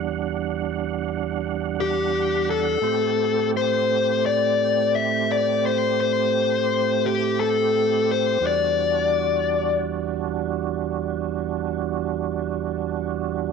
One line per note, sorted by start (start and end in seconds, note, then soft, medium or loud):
0.00 2.78 E2 medium
0.00 2.78 G3 medium
0.00 2.79 D4 medium
0.00 2.79 F#5 medium
1.80 2.50 G4 medium
2.50 3.50 A4 medium
2.81 8.38 A2 medium
2.81 8.38 A3 medium
2.81 8.39 C4 medium
2.81 8.39 G4 medium
3.57 4.25 C5 medium
4.26 4.96 D5 medium
4.95 5.30 E5 medium
5.32 5.65 D5 medium
5.66 5.99 C5 medium
6.00 7.07 C5 medium
7.06 7.40 G4 medium
7.40 8.11 A4 medium
8.11 8.45 C5 medium
8.40 13.52 E2 medium
8.40 13.52 G3 medium
8.40 13.52 D4 medium
8.40 13.52 F#4 medium
8.47 9.80 D5 medium